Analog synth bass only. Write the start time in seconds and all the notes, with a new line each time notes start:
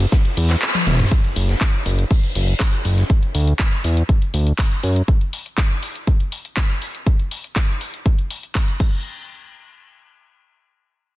0.37 E2
0.87 E1
1.36 F#1
1.86 F#1
2.36 F#1
2.85 F#1
3.35 D2
3.84 E2
4.34 D2
4.83 F#2